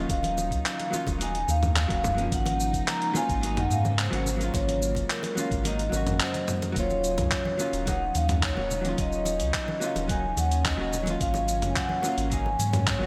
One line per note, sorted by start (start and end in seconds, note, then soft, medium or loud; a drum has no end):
0.00 2.27 C#3 medium
0.00 2.28 D#3 medium
0.00 0.88 F#3 medium
0.00 0.89 A#3 medium
0.00 0.90 C#4 medium
0.00 2.28 D#4 medium
0.00 0.91 F4 medium
0.00 0.12 D#5 medium
0.09 0.53 D#1 loud
0.09 1.17 F5 loud
0.09 kick loud
0.09 closed hi-hat medium
0.09 muted conga medium
0.09 cabasa soft
0.23 closed hi-hat soft
0.23 high conga medium
0.23 cabasa soft
0.38 muted conga medium
0.38 cabasa medium
0.51 0.63 C#2 medium
0.51 kick medium
0.51 closed hi-hat soft
0.51 cabasa soft
0.66 clap loud
0.66 closed hi-hat medium
0.66 cabasa soft
0.80 closed hi-hat soft
0.80 muted conga soft
0.91 1.16 F#3 medium
0.91 1.17 A#3 medium
0.91 1.17 C#4 medium
0.91 1.18 F4 loud
0.91 high conga medium
0.91 cabasa medium
1.07 1.45 D#1 loud
1.07 kick loud
1.07 closed hi-hat soft
1.07 muted conga medium
1.07 cabasa soft
1.19 1.36 F#3 medium
1.19 1.36 A#3 medium
1.19 1.37 D#4 loud
1.19 1.47 G#5 loud
1.19 closed hi-hat medium
1.19 cabasa soft
1.35 closed hi-hat soft
1.48 1.87 D#2 loud
1.48 2.35 F5 loud
1.48 muted conga medium
1.48 cabasa medium
1.63 mid tom medium
1.63 high conga medium
1.63 cabasa soft
1.76 clap loud
1.76 closed hi-hat medium
1.76 muted conga medium
1.76 cabasa soft
1.88 2.28 D#1 medium
1.88 2.05 F#3 medium
1.88 2.06 A#3 medium
1.88 2.06 C#4 medium
1.88 2.07 F#4 medium
1.88 kick loud
1.88 closed hi-hat soft
2.03 kick medium
2.03 mid tom medium
2.03 low conga medium
2.03 cabasa medium
2.14 2.21 F#3 medium
2.14 3.11 A#3 medium
2.14 closed hi-hat soft
2.14 muted conga soft
2.14 cabasa soft
2.19 3.13 F3 medium
2.19 3.12 C#4 medium
2.32 2.75 G#1 loud
2.32 6.72 C#3 medium
2.32 6.72 G#3 medium
2.32 6.72 A#3 medium
2.32 4.52 D#4 medium
2.32 2.90 F#5 loud
2.32 kick loud
2.32 closed hi-hat medium
2.32 cabasa soft
2.46 closed hi-hat soft
2.46 muted conga medium
2.46 high conga medium
2.46 cabasa soft
2.60 cabasa medium
2.73 2.85 F#1 medium
2.73 kick medium
2.73 closed hi-hat soft
2.73 cabasa soft
2.87 3.01 A#5 loud
2.87 clap loud
2.87 closed hi-hat medium
2.87 muted conga soft
2.87 cabasa soft
3.02 closed hi-hat soft
3.14 3.39 F#3 medium
3.14 3.39 A#3 medium
3.14 3.40 C#4 medium
3.14 3.40 F4 loud
3.14 3.59 G#5 loud
3.14 muted conga medium
3.14 high conga medium
3.14 cabasa medium
3.29 3.67 G#1 loud
3.29 kick loud
3.29 closed hi-hat soft
3.29 cabasa soft
3.41 3.58 F#3 medium
3.41 3.59 A#3 medium
3.41 3.60 D#4 loud
3.41 closed hi-hat medium
3.41 cabasa soft
3.57 3.64 F#5 medium
3.57 closed hi-hat soft
3.57 mid tom medium
3.57 muted conga medium
3.70 4.09 G#2 loud
3.70 3.97 F5 medium
3.70 cabasa medium
3.85 muted conga medium
3.85 high conga medium
3.85 cabasa soft
3.99 4.57 C5 medium
3.99 clap loud
3.99 closed hi-hat medium
3.99 cabasa soft
4.11 4.51 G#1 medium
4.11 4.27 F#3 medium
4.11 4.28 A#3 medium
4.11 4.29 C#4 medium
4.11 4.29 F#4 medium
4.11 closed hi-hat medium
4.26 muted conga medium
4.26 low conga medium
4.26 cabasa medium
4.36 5.32 F#3 medium
4.36 5.33 A#3 medium
4.41 5.35 C#4 medium
4.41 5.36 F4 medium
4.41 closed hi-hat soft
4.41 cabasa soft
4.54 4.97 G#1 loud
4.54 5.12 C#5 loud
4.54 kick loud
4.54 closed hi-hat medium
4.54 muted conga medium
4.54 cabasa soft
4.69 closed hi-hat soft
4.69 high conga medium
4.69 cabasa soft
4.82 cabasa medium
4.95 5.07 F#1 medium
4.95 kick medium
4.95 closed hi-hat soft
4.95 muted conga medium
4.95 cabasa soft
5.10 5.68 A#4 loud
5.10 clap loud
5.10 closed hi-hat medium
5.10 cabasa soft
5.23 closed hi-hat soft
5.23 muted conga medium
5.23 cabasa soft
5.35 5.61 F#3 medium
5.35 5.61 A#3 medium
5.35 5.62 C#4 medium
5.35 5.63 F4 loud
5.35 high conga medium
5.35 cabasa medium
5.51 5.89 G#1 medium
5.51 kick loud
5.51 closed hi-hat soft
5.51 cabasa soft
5.64 5.80 F#3 medium
5.64 5.81 A#3 medium
5.64 5.82 D#4 loud
5.64 6.45 D#5 medium
5.64 closed hi-hat medium
5.64 muted conga medium
5.64 cabasa soft
5.79 closed hi-hat soft
5.79 cabasa soft
5.89 6.21 G#1 medium
5.89 6.71 F#3 medium
5.89 6.74 A#3 medium
5.89 muted conga medium
5.89 cabasa medium
5.94 6.75 C#4 medium
5.94 6.76 F#4 medium
6.07 closed hi-hat soft
6.07 mid tom medium
6.07 high conga loud
6.07 cabasa soft
6.20 6.79 C5 medium
6.20 clap loud
6.20 closed hi-hat medium
6.20 cabasa soft
6.34 closed hi-hat soft
6.34 muted conga medium
6.34 cabasa soft
6.48 mid tom medium
6.48 low conga medium
6.48 cabasa medium
6.62 closed hi-hat soft
6.62 muted conga medium
6.62 cabasa soft
6.72 7.19 D#1 loud
6.72 7.52 F#3 loud
6.72 13.06 F#3 medium
6.72 7.53 A#3 medium
6.72 11.17 D#4 medium
6.72 kick loud
6.72 closed hi-hat medium
6.76 13.06 C#3 medium
6.76 13.06 C#4 medium
6.76 7.54 C#4 medium
6.76 7.56 F4 loud
6.76 7.92 C#5 loud
6.76 cabasa soft
6.90 muted conga soft
6.90 cabasa soft
7.04 closed hi-hat soft
7.04 cabasa medium
7.18 7.29 C#2 medium
7.18 closed hi-hat soft
7.18 mid tom medium
7.18 muted conga medium
7.18 cabasa soft
7.31 kick loud
7.31 clap loud
7.31 closed hi-hat medium
7.31 cabasa soft
7.45 high conga medium
7.58 7.83 F#3 loud
7.58 7.84 A#3 medium
7.58 7.84 C#4 medium
7.58 7.85 F4 loud
7.58 muted conga soft
7.58 cabasa medium
7.73 8.12 D#1 loud
7.73 closed hi-hat soft
7.73 cabasa soft
7.85 8.02 F#3 medium
7.85 8.03 A#3 medium
7.85 8.04 D#4 loud
7.85 8.14 F#5 loud
7.85 kick loud
7.85 closed hi-hat medium
7.85 muted conga medium
7.85 cabasa soft
8.15 8.53 D#2 loud
8.15 8.41 F5 loud
8.15 closed hi-hat medium
8.15 high conga medium
8.15 cabasa medium
8.29 closed hi-hat soft
8.29 mid tom medium
8.29 muted conga medium
8.29 cabasa soft
8.43 9.00 C#5 loud
8.43 kick loud
8.43 clap loud
8.43 closed hi-hat medium
8.43 cabasa soft
8.55 8.95 D#1 medium
8.55 8.72 F#3 medium
8.55 8.73 A#3 medium
8.55 8.73 C#4 medium
8.55 8.74 F#4 medium
8.55 muted conga medium
8.71 low conga medium
8.71 cabasa medium
8.81 9.77 F#3 medium
8.81 9.78 A#3 medium
8.81 closed hi-hat soft
8.81 cabasa soft
8.86 9.79 C#4 medium
8.86 9.80 F4 loud
8.86 high conga medium
8.98 9.42 D#1 loud
8.98 10.14 D#5 loud
8.98 kick loud
8.98 closed hi-hat medium
8.98 muted conga medium
8.98 cabasa soft
9.12 cabasa soft
9.25 closed hi-hat soft
9.25 muted conga medium
9.25 cabasa medium
9.40 9.52 C#2 medium
9.40 closed hi-hat soft
9.40 cabasa soft
9.54 kick loud
9.54 clap loud
9.54 closed hi-hat medium
9.54 cabasa soft
9.68 muted conga soft
9.68 high conga medium
9.80 10.05 F#3 medium
9.80 10.06 A#3 medium
9.80 10.07 C#4 medium
9.80 10.07 F4 loud
9.80 cabasa medium
9.96 10.34 D#1 medium
9.96 closed hi-hat soft
9.96 muted conga medium
9.96 cabasa soft
10.08 10.25 F#3 medium
10.08 10.25 A#3 medium
10.08 10.26 D#4 loud
10.08 10.36 G#5 loud
10.08 kick loud
10.08 closed hi-hat medium
10.08 cabasa soft
10.37 10.76 D#2 loud
10.37 10.64 F#5 loud
10.37 closed hi-hat soft
10.37 muted conga soft
10.37 high conga medium
10.37 cabasa medium
10.51 closed hi-hat soft
10.51 cabasa soft
10.65 11.17 D#5 medium
10.65 kick loud
10.65 clap loud
10.65 closed hi-hat medium
10.65 muted conga medium
10.65 cabasa soft
10.77 11.17 D#1 medium
10.77 10.94 F#3 medium
10.77 10.95 A#3 medium
10.77 10.95 C#4 medium
10.77 10.96 F#4 medium
10.93 low conga medium
10.93 cabasa medium
11.03 11.99 F#3 medium
11.03 12.00 A#3 medium
11.03 muted conga soft
11.07 12.01 C#4 medium
11.07 12.02 F4 medium
11.07 closed hi-hat soft
11.07 high conga medium
11.07 cabasa soft
11.21 11.64 G#1 loud
11.21 13.06 A#3 medium
11.21 11.71 F5 loud
11.21 kick loud
11.21 closed hi-hat medium
11.21 cabasa soft
11.34 muted conga medium
11.34 cabasa soft
11.48 closed hi-hat soft
11.48 cabasa medium
11.62 11.74 F#1 medium
11.62 closed hi-hat soft
11.62 mid tom medium
11.62 cabasa soft
11.70 11.77 G#5 medium
11.76 12.28 F#5 loud
11.76 kick loud
11.76 clap loud
11.76 closed hi-hat medium
11.76 muted conga soft
11.76 cabasa soft
11.89 high conga loud
12.02 12.28 F#3 medium
12.02 12.28 A#3 medium
12.02 12.29 C#4 medium
12.02 12.29 F4 loud
12.02 muted conga medium
12.02 cabasa medium
12.18 12.56 G#1 loud
12.18 closed hi-hat soft
12.18 cabasa soft
12.30 12.47 F#3 medium
12.30 12.48 A#3 medium
12.30 12.49 D#4 loud
12.30 12.90 G#5 loud
12.30 kick loud
12.30 closed hi-hat medium
12.30 cabasa soft
12.46 muted conga medium
12.59 12.98 G#2 loud
12.59 closed hi-hat medium
12.59 high conga medium
12.59 cabasa medium
12.73 closed hi-hat soft
12.73 mid tom medium
12.73 muted conga medium
12.73 cabasa soft
12.87 13.06 C#5 medium
12.87 kick loud
12.87 clap loud
12.87 closed hi-hat medium
12.87 cabasa soft
12.99 13.06 G#1 medium
12.99 13.06 F#3 medium
12.99 13.06 A#3 medium
12.99 13.06 C#4 medium
12.99 13.06 F#4 medium